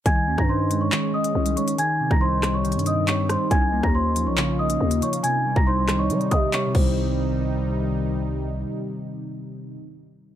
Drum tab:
CC |------------------------------------------------|------------------------------------------------|------------------------------------------------|------------------------------------------x-----|
HH |x-----------------x-----x--------x-----x--x--x--|x-----------------x-----x-x-x-x-----x-----x-----|x-----------------x-----x--------x-----x--x--x--|x-----------------x-----x--x--x-----x-----------|
CP |------------------------x-----------------------|------------------x-----------------x-----------|------------------------x-----------------------|------------------x-----------------x-----------|
SD |---------r--------------------------------------|---------r--------r-----------------------r-----|---------r--------------------------------------|------------------r-----------------------------|
BD |o--------o--------------------------------------|---------o--------------------------------------|o--------o--------------------------------------|---------o--------------------o-----------o-----|

CC |------------------------------------------------|------------------------------------------------|
HH |------------------------------------------------|------------------------------------------------|
CP |------------------------------------------------|------------------------------------------------|
SD |------------------------------------------------|------------------------------------------------|
BD |------------------------------------------------|------------------------------------------------|